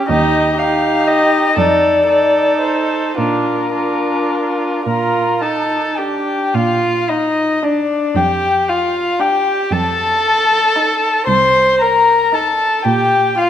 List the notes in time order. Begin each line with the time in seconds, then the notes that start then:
0.08 D#2 D#4 G4 D#5
0.56 D#4 G4 F5
1.07 D#5
1.56 F2 D#4 A4 D5
2.08 D#4 A4
2.62 C5
3.18 A#2 D4 F4 A#4
3.75 D4 F4
4.86 A#2 F4 A#4 A#5
5.42 D#4 A4 A5
5.97 D4 G4 G5
6.54 A#2 F4 F5
7.09 D#4 D#5
7.63 D4 D5
8.15 F2 G4 G5
8.68 F4 F5
9.20 D4 G4 G5
9.71 F2 A4 A5
10.76 D#4
11.27 C2 C5 C6
11.81 A#4 A#5
12.32 D#4 A4 A5
12.85 A#2 G4 G5
13.38 F4 F5